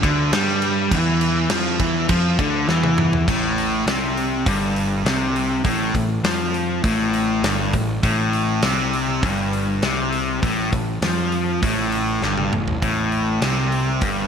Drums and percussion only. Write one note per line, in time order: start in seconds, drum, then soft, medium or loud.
0.03 kick loud
0.03 crash medium
0.33 snare loud
0.33 crash medium
0.48 snare soft
0.62 crash medium
0.91 kick loud
0.91 crash medium
1.21 crash medium
1.50 snare loud
1.50 crash medium
1.79 kick loud
1.79 crash medium
2.09 kick loud
2.09 crash medium
2.39 kick loud
2.39 crash medium
2.69 snare medium
2.83 high tom medium
2.98 mid tom medium
3.13 floor tom medium
3.28 kick loud
3.28 crash loud
3.58 open hi-hat soft
3.88 snare loud
3.88 open hi-hat medium
4.17 open hi-hat soft
4.46 kick loud
4.46 open hi-hat medium
4.76 open hi-hat medium
5.06 snare loud
5.06 open hi-hat medium
5.36 open hi-hat medium
5.65 kick medium
5.65 open hi-hat medium
5.95 kick medium
5.95 open hi-hat medium
6.24 snare loud
6.24 open hi-hat medium
6.54 open hi-hat soft
6.84 kick loud
6.84 open hi-hat medium
7.14 open hi-hat medium
7.44 snare loud
7.44 open hi-hat medium
7.73 kick medium
7.73 open hi-hat medium
8.03 kick medium
8.03 open hi-hat medium
8.33 open hi-hat soft
8.62 snare loud
8.62 open hi-hat medium
8.93 open hi-hat soft
9.23 kick loud
9.23 open hi-hat medium
9.53 open hi-hat soft
9.83 snare loud
9.83 open hi-hat medium
10.13 open hi-hat medium
10.43 kick loud
10.43 open hi-hat medium
10.73 kick medium
10.73 open hi-hat medium
11.02 snare loud
11.02 open hi-hat medium
11.32 open hi-hat soft
11.63 kick loud
11.63 open hi-hat medium
11.92 open hi-hat medium
12.22 snare medium
12.37 high tom medium
12.53 mid tom medium
12.68 floor tom medium
12.82 kick medium
12.82 open hi-hat medium
13.12 open hi-hat soft
13.42 snare loud
13.42 open hi-hat medium
13.72 open hi-hat soft
14.01 kick loud
14.01 open hi-hat medium